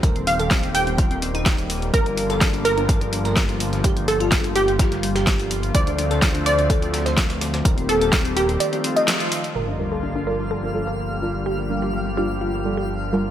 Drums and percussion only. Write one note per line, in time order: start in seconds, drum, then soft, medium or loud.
0.03 kick loud
0.03 closed hi-hat medium
0.16 closed hi-hat soft
0.27 closed hi-hat medium
0.27 open hi-hat loud
0.40 closed hi-hat soft
0.51 kick loud
0.51 snare loud
0.51 closed hi-hat medium
0.63 closed hi-hat soft
0.75 closed hi-hat medium
0.75 open hi-hat loud
0.87 closed hi-hat soft
0.98 kick loud
0.98 closed hi-hat medium
1.11 closed hi-hat soft
1.22 closed hi-hat medium
1.22 open hi-hat loud
1.35 closed hi-hat soft
1.46 kick loud
1.46 snare loud
1.46 closed hi-hat medium
1.58 closed hi-hat soft
1.70 closed hi-hat medium
1.70 open hi-hat loud
1.82 closed hi-hat soft
1.94 kick loud
1.94 closed hi-hat medium
2.06 closed hi-hat soft
2.17 closed hi-hat medium
2.17 open hi-hat loud
2.30 snare soft
2.30 closed hi-hat soft
2.41 kick loud
2.41 snare loud
2.41 closed hi-hat medium
2.54 closed hi-hat soft
2.65 closed hi-hat medium
2.65 open hi-hat loud
2.78 closed hi-hat soft
2.89 kick loud
2.89 closed hi-hat medium
3.01 closed hi-hat soft
3.13 closed hi-hat medium
3.13 open hi-hat loud
3.25 snare soft
3.25 closed hi-hat soft
3.36 kick loud
3.36 snare loud
3.36 closed hi-hat medium
3.49 snare soft
3.49 closed hi-hat soft
3.60 closed hi-hat medium
3.60 open hi-hat loud
3.73 snare soft
3.73 closed hi-hat soft
3.84 kick loud
3.84 closed hi-hat medium
3.97 closed hi-hat soft
4.08 closed hi-hat medium
4.08 open hi-hat loud
4.20 closed hi-hat soft
4.32 kick loud
4.32 snare loud
4.32 closed hi-hat medium
4.44 closed hi-hat soft
4.56 closed hi-hat medium
4.56 open hi-hat loud
4.68 closed hi-hat soft
4.79 kick loud
4.79 snare loud
4.79 closed hi-hat medium
4.92 snare soft
4.92 closed hi-hat soft
5.03 closed hi-hat medium
5.03 open hi-hat loud
5.16 snare loud
5.16 closed hi-hat medium
5.16 closed hi-hat soft
5.27 kick loud
5.27 snare loud
5.27 closed hi-hat medium
5.39 closed hi-hat medium
5.39 closed hi-hat soft
5.51 closed hi-hat medium
5.51 open hi-hat loud
5.63 closed hi-hat soft
5.75 kick loud
5.75 closed hi-hat medium
5.87 closed hi-hat soft
5.98 closed hi-hat medium
5.98 open hi-hat loud
6.11 snare soft
6.11 closed hi-hat soft
6.22 kick loud
6.22 snare loud
6.22 closed hi-hat medium
6.35 closed hi-hat soft
6.46 closed hi-hat medium
6.46 open hi-hat loud
6.59 closed hi-hat soft
6.70 kick loud
6.70 closed hi-hat medium
6.70 closed hi-hat loud
6.82 closed hi-hat soft
6.94 snare loud
6.94 closed hi-hat medium
6.94 open hi-hat loud
7.06 snare loud
7.06 closed hi-hat medium
7.06 closed hi-hat soft
7.17 kick loud
7.17 snare loud
7.17 closed hi-hat medium
7.30 snare loud
7.30 closed hi-hat medium
7.30 closed hi-hat soft
7.41 snare loud
7.41 closed hi-hat medium
7.41 open hi-hat loud
7.54 snare loud
7.54 closed hi-hat medium
7.54 closed hi-hat soft
7.65 kick loud
7.65 closed hi-hat medium
7.65 closed hi-hat loud
7.78 closed hi-hat soft
7.89 closed hi-hat medium
7.89 open hi-hat loud
8.01 closed hi-hat soft
8.13 kick loud
8.13 snare loud
8.13 closed hi-hat medium
8.25 closed hi-hat soft
8.37 closed hi-hat medium
8.37 open hi-hat loud
8.49 closed hi-hat soft
8.60 closed hi-hat medium
8.60 closed hi-hat loud
8.73 closed hi-hat soft
8.84 closed hi-hat medium
8.84 open hi-hat loud
8.97 closed hi-hat soft
9.08 snare loud
9.08 closed hi-hat medium
9.20 closed hi-hat soft
9.32 closed hi-hat medium
9.32 open hi-hat loud
9.44 closed hi-hat soft